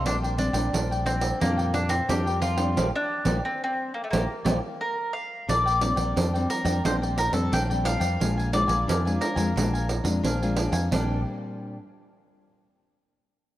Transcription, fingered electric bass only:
X:1
M:4/4
L:1/16
Q:1/4=88
K:Bb
V:1 name="Fingered electric bass" clef=bass
B,,,3 B,,, B,,,4 F,,4 F,,4 | B,,, z2 B,,, z4 B,,, z B,,, z4 z | B,,,3 B,,, F,,2 z F,, B,,,3 F,, B,,,3 F,, | B,,,3 B,,, F,,2 z F,, B,,,3 F,, B,,,3 F,, |
B,,,2 z12 z2 |]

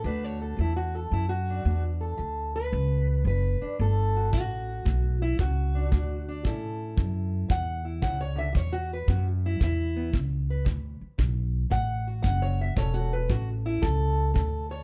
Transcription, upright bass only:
X:1
M:4/4
L:1/8
Q:"Swing" 1/4=114
K:Dlyd
V:1 name="Upright bass" clef=bass
D,,2 E,,2 F,,2 E,,2 | D,,2 C,,2 F,,, z =G,,,2 | A,,,2 B,,,2 C,,2 D,,2 | A,,2 F,,2 E,,2 C,,2 |
E,,2 F,,2 E,,2 C,,2 | D,, z B,,,2 A,,,2 F,,,2 | E,,,2 A,,,2 C,,2 D,,2 |]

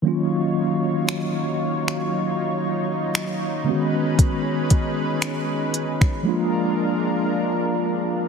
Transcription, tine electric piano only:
X:1
M:4/4
L:1/8
Q:"Swing 16ths" 1/4=58
K:Ebm
V:1 name="Tine electric piano"
[E,G,B,DF]6- [E,G,B,DF] [=D,^D,^G,=B,^C^F]- | [=D,^D,^G,=B,^C^F]4 [=F,A,_B,=D=F]4 |]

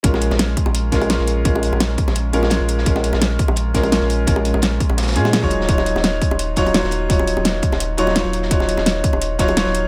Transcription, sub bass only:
X:1
M:4/4
L:1/16
Q:1/4=170
K:Bbphr
V:1 name="Sub bass" clef=bass
B,,,3 B,,,3 z B,,,3 B,,,3 B,,,3 | B,,,3 B,,,3 z B,,,3 B,,,3 B,,,3 | B,,,3 B,,,3 z B,,,3 B,,,3 B,,,3 | B,,,3 B,,,3 z B,,,3 B,,3 E,,,3 |
E,,,3 E,,,3 z E,,,3 E,,,3 E,,,3 | E,,,3 E,,,3 z E,,,3 E,,,3 E,,,3 | E,,,3 E,,,3 z E,,,3 E,,,3 E,,,3 |]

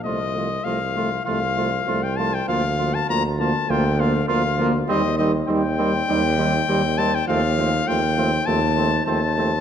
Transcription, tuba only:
X:1
M:4/4
L:1/8
Q:1/4=100
K:Fmix
V:1 name="Tuba" clef=bass
C,,2 C,,2 C,,2 C,,2 | D,,2 D,,2 D,,2 D,,2 | E,,2 E,,2 E,,2 E,,2 | E,,2 E,,2 E,,2 E,,2 |]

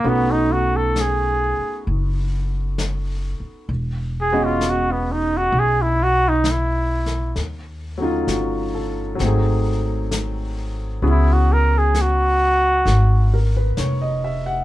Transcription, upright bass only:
X:1
M:4/4
L:1/8
Q:"Swing" 1/4=66
K:B
V:1 name="Upright bass" clef=bass
B,,,3 z F,,,3 z | E,,,4 B,,,4 | D,,2 =G,,,2 ^G,,,4 | C,,4 G,,,2 ^E,,,2 |]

